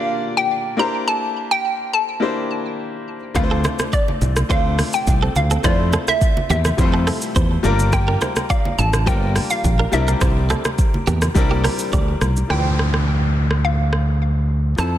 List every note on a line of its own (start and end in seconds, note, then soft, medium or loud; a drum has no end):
0.00 0.77 A#3 medium
0.00 0.77 D4 medium
0.00 0.81 F4 medium
0.00 0.79 G4 medium
0.00 0.80 D5 loud
0.00 0.38 F5 loud
0.37 0.80 G5 loud
0.77 1.72 A#3 medium
0.77 1.73 D4 medium
0.77 1.73 E4 medium
0.77 1.73 G4 medium
0.77 1.74 C5 medium
0.77 1.08 A#5 loud
1.08 1.52 A5 loud
1.51 1.90 G5 loud
1.93 3.03 A5 loud
2.20 3.15 A#3 medium
2.20 3.16 D4 medium
2.20 3.16 E4 medium
2.20 3.16 G4 medium
2.20 3.17 C5 medium
3.34 3.66 D2 loud
3.34 4.30 A3 medium
3.34 4.30 C4 medium
3.34 4.30 D4 medium
3.34 4.31 F4 medium
3.34 3.43 B4 medium
3.34 3.95 F5 loud
3.34 kick loud
3.34 cross-stick loud
3.34 low conga medium
3.34 shaker medium
3.43 4.34 C5 medium
3.51 3.62 C4 medium
3.51 3.61 A4 medium
3.64 3.76 E4 medium
3.64 3.76 C5 medium
3.64 cross-stick medium
3.64 high conga medium
3.64 shaker medium
3.79 cross-stick loud
3.79 high conga medium
3.79 shaker medium
3.93 4.15 F4 medium
3.93 4.15 D5 medium
3.93 4.52 D5 loud
3.93 kick loud
3.93 shaker medium
4.08 high conga medium
4.21 4.42 C2 medium
4.21 low conga medium
4.21 shaker medium
4.36 cross-stick loud
4.36 high conga medium
4.36 shaker medium
4.49 4.81 D2 loud
4.49 5.44 A3 medium
4.49 5.45 C4 medium
4.49 5.45 D4 medium
4.49 4.73 E4 medium
4.49 5.45 F4 medium
4.49 4.72 C5 medium
4.49 5.45 C5 medium
4.49 4.95 F5 loud
4.49 kick loud
4.49 shaker medium
4.79 cross-stick medium
4.79 open hi-hat medium
4.79 high conga medium
4.79 shaker medium
4.93 5.37 G5 loud
4.93 shaker medium
5.07 5.27 C2 loud
5.07 kick medium
5.07 low conga medium
5.07 shaker medium
5.23 5.33 C4 medium
5.23 5.33 A4 medium
5.36 5.56 D2 loud
5.36 5.65 F5 medium
5.36 high conga medium
5.36 shaker medium
5.51 5.62 C4 medium
5.51 5.61 A4 medium
5.51 high conga medium
5.51 shaker medium
5.63 5.95 F2 loud
5.63 6.58 A3 medium
5.63 6.59 C4 medium
5.63 6.59 E4 medium
5.63 5.76 E4 medium
5.63 6.59 F4 medium
5.63 5.76 C5 loud
5.63 6.60 C5 medium
5.63 6.09 D5 loud
5.63 kick loud
5.63 cross-stick loud
5.63 low conga medium
5.63 shaker medium
5.93 6.05 C4 medium
5.93 6.04 A4 medium
5.93 cross-stick medium
5.93 high conga medium
5.93 shaker medium
6.08 6.49 E5 loud
6.08 cross-stick loud
6.08 high conga medium
6.08 shaker medium
6.21 kick loud
6.21 shaker medium
6.37 high conga medium
6.50 6.70 E2 medium
6.50 6.62 A#3 medium
6.50 6.62 G4 medium
6.50 7.61 E5 medium
6.50 low conga medium
6.50 shaker soft
6.65 cross-stick loud
6.65 high conga medium
6.65 shaker medium
6.77 7.09 F2 loud
6.77 6.85 G3 medium
6.77 7.64 C4 medium
6.77 7.64 E4 medium
6.77 7.63 F4 medium
6.77 7.65 C5 medium
6.77 kick loud
6.77 shaker medium
6.84 7.67 A3 medium
6.94 7.04 C4 medium
6.94 7.04 A4 medium
7.07 7.19 C4 medium
7.07 7.19 A4 medium
7.07 cross-stick medium
7.07 open hi-hat medium
7.07 high conga medium
7.07 shaker medium
7.22 shaker medium
7.36 7.56 E2 loud
7.36 7.58 E4 medium
7.36 7.58 C5 medium
7.36 kick medium
7.36 low conga medium
7.36 shaker medium
7.63 8.15 G1 loud
7.63 8.58 G3 medium
7.63 8.59 A#3 medium
7.63 8.59 D4 medium
7.63 8.59 F4 medium
7.63 8.60 A#4 loud
7.63 high conga medium
7.63 shaker medium
7.79 high conga medium
7.79 shaker medium
7.93 8.52 G5 loud
7.93 kick loud
7.93 cross-stick loud
7.93 low conga medium
7.93 shaker medium
8.08 8.19 D4 medium
8.08 8.18 A#4 medium
8.21 8.33 E4 medium
8.21 8.33 C5 medium
8.21 cross-stick medium
8.21 high conga medium
8.21 shaker medium
8.36 cross-stick loud
8.36 high conga medium
8.36 shaker medium
8.50 8.72 F4 medium
8.50 8.72 D5 medium
8.50 8.79 F5 loud
8.50 kick loud
8.50 shaker medium
8.65 high conga medium
8.78 9.08 A1 medium
8.78 9.08 A5 loud
8.78 low conga medium
8.78 shaker medium
8.93 cross-stick loud
8.93 high conga medium
8.93 shaker medium
9.06 9.38 G1 loud
9.06 9.90 G3 medium
9.06 9.93 A#3 medium
9.06 9.91 D4 medium
9.06 9.93 F4 medium
9.06 9.29 F4 medium
9.06 9.92 A#4 medium
9.06 9.29 C5 medium
9.06 9.52 G5 loud
9.06 kick loud
9.06 shaker medium
9.36 cross-stick medium
9.36 open hi-hat medium
9.36 high conga medium
9.36 shaker medium
9.50 9.94 F5 medium
9.50 shaker medium
9.64 9.85 A#1 loud
9.64 kick medium
9.64 low conga medium
9.64 shaker medium
9.79 9.90 D4 medium
9.79 9.90 A#4 medium
9.91 10.13 C2 loud
9.91 10.87 G3 medium
9.91 10.87 C4 medium
9.91 10.88 D4 medium
9.91 10.88 E4 medium
9.91 10.88 A#4 medium
9.91 11.89 E5 medium
9.91 high conga medium
9.91 shaker medium
10.08 10.19 D4 medium
10.08 10.18 A#4 medium
10.08 high conga medium
10.08 shaker medium
10.21 10.52 C2 loud
10.21 10.33 E4 medium
10.21 10.33 C5 loud
10.21 kick loud
10.21 cross-stick loud
10.21 low conga medium
10.21 shaker medium
10.50 10.62 C4 medium
10.50 10.61 A4 medium
10.50 cross-stick medium
10.50 high conga medium
10.50 shaker medium
10.65 cross-stick loud
10.65 high conga medium
10.65 shaker medium
10.78 kick loud
10.78 shaker medium
10.94 high conga medium
11.07 11.27 E2 loud
11.07 11.19 A#3 medium
11.07 11.19 G4 medium
11.07 low conga medium
11.07 shaker medium
11.22 cross-stick loud
11.22 high conga medium
11.22 shaker medium
11.34 11.66 C2 loud
11.34 12.30 G3 medium
11.34 12.30 C4 medium
11.34 12.31 D4 medium
11.34 12.31 E4 medium
11.34 12.31 A#4 loud
11.34 kick loud
11.34 shaker medium
11.51 11.62 A#3 medium
11.51 11.61 G4 medium
11.64 11.76 D4 medium
11.64 11.76 A#4 medium
11.64 cross-stick medium
11.64 open hi-hat medium
11.64 high conga medium
11.64 shaker medium
11.79 shaker medium
11.93 12.13 D2 medium
11.93 12.15 G4 medium
11.93 12.15 D5 medium
11.93 kick loud
11.93 low conga medium
11.93 shaker medium
12.21 12.41 C2 medium
12.21 cross-stick medium
12.21 high conga medium
12.21 shaker medium
12.36 high conga medium
12.36 shaker medium
12.48 14.75 D2 medium
12.48 14.75 E3 medium
12.48 14.73 F3 medium
12.48 14.74 D4 medium
12.48 13.68 G5 medium
12.48 cross-stick medium
12.48 downlifter medium
12.53 12.58 B4 medium
12.59 14.79 C5 medium
12.79 cross-stick medium
12.94 cross-stick medium
13.51 cross-stick medium
13.65 14.82 F5 medium
13.93 cross-stick medium
14.76 14.98 F2 medium
14.76 14.98 F3 medium
14.76 14.98 C4 medium
14.76 14.98 E4 medium
14.76 14.98 A5 loud
14.76 cross-stick medium
14.76 shaker medium
14.81 14.98 A4 medium